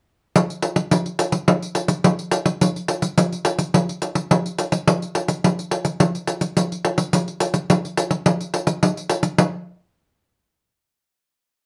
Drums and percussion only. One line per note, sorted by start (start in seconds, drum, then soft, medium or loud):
0.36 pandeiro medium
0.50 pandeiro soft
0.62 pandeiro medium
0.76 pandeiro medium
0.91 pandeiro medium
1.06 pandeiro soft
1.19 pandeiro medium
1.32 pandeiro medium
1.48 pandeiro medium
1.62 pandeiro soft
1.75 pandeiro medium
1.88 pandeiro medium
2.04 pandeiro medium
2.19 pandeiro soft
2.31 pandeiro medium
2.46 pandeiro medium
2.61 pandeiro medium
2.76 pandeiro soft
2.88 pandeiro medium
3.02 pandeiro medium
3.18 pandeiro medium
3.33 pandeiro soft
3.45 pandeiro medium
3.59 pandeiro medium
3.74 pandeiro medium
3.89 pandeiro soft
4.02 pandeiro medium
4.15 pandeiro medium
4.31 pandeiro medium
4.46 pandeiro soft
4.58 pandeiro medium
4.72 pandeiro medium
4.88 pandeiro medium
5.02 pandeiro soft
5.15 pandeiro medium
5.28 pandeiro medium
5.44 pandeiro medium
5.59 pandeiro soft
5.71 pandeiro medium
5.85 pandeiro medium
6.00 pandeiro medium
6.15 pandeiro soft
6.27 pandeiro medium
6.41 pandeiro medium
6.57 pandeiro medium
6.72 pandeiro soft
6.85 pandeiro medium
6.98 pandeiro medium
7.13 pandeiro medium
7.28 pandeiro soft
7.40 pandeiro medium
7.54 pandeiro medium
7.70 pandeiro medium
7.85 pandeiro soft
7.97 pandeiro medium
8.11 pandeiro medium
8.26 pandeiro medium
8.41 pandeiro soft
8.54 pandeiro medium
8.67 pandeiro medium
8.83 pandeiro medium
8.97 pandeiro soft
9.10 pandeiro medium
9.23 pandeiro medium
9.38 pandeiro medium